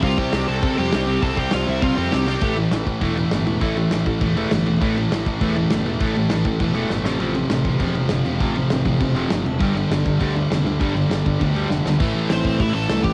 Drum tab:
CC |--------|--------|xxxxxxxx|xxxxxxxx|
HH |o-o-o-o-|o-o-o-o-|--------|--------|
SD |--o---o-|--o---oo|--o---o-|--o---o-|
BD |oo--o---|oo--o---|o--oo---|o--oo---|

CC |xxxxxxxx|xxxxxx--|xxxxxxxx|xxxxxxxx|
HH |--------|--------|--------|--------|
SD |--o---o-|--o---oo|--o---o-|--o---o-|
BD |o--oo---|o--oo---|---oo---|o--oo---|

CC |xxxxxxxx|xxxxxx--|x-------|
HH |--------|--------|--o-o-o-|
SD |--o---o-|--o---oo|--o---o-|
BD |o--oo---|o--oo---|o--oo--o|